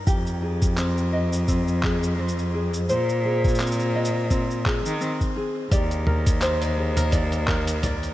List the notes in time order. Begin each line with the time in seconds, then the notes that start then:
Already playing: D#4 G4 D5
0.07 F2 G4, kick, cabasa
0.27 cabasa
0.42 G#4
0.62 kick, cabasa
0.77 C4, clap, cabasa
0.97 cabasa
1.13 D#5
1.32 cabasa
1.48 C4, kick, cabasa
1.68 cabasa
1.83 G#4, kick, clap
2.03 cabasa
2.19 C4
2.28 cabasa
2.39 cabasa
2.54 G#4
2.74 cabasa
2.89 A#2 C5, cabasa
3.09 cabasa
3.25 G#4
3.44 kick, cabasa
3.48 cabasa
3.55 cabasa
3.60 C4, clap, cabasa
3.66 cabasa
3.72 cabasa
3.79 cabasa
3.95 D#5
4.05 cabasa
4.30 C4, kick, cabasa
4.51 cabasa
4.66 G#4, kick, clap
4.86 D#3, cabasa
5.01 C4, cabasa
5.21 kick, cabasa
5.36 G#4
5.71 D#2 G4 D5, kick, closed hi-hat, cabasa
5.91 closed hi-hat, cabasa
6.06 A#4, mid tom
6.26 kick, closed hi-hat, cabasa
6.42 C5, clap, closed hi-hat, cabasa
6.62 D5, closed hi-hat, cabasa
6.77 G#4
6.97 A#4, closed hi-hat, mid tom, cabasa
7.12 D5, kick, closed hi-hat, cabasa
7.32 closed hi-hat, cabasa
7.48 A#4, kick, clap
7.67 closed hi-hat, cabasa
7.83 D5, closed hi-hat, mid tom, cabasa
8.03 closed hi-hat, cabasa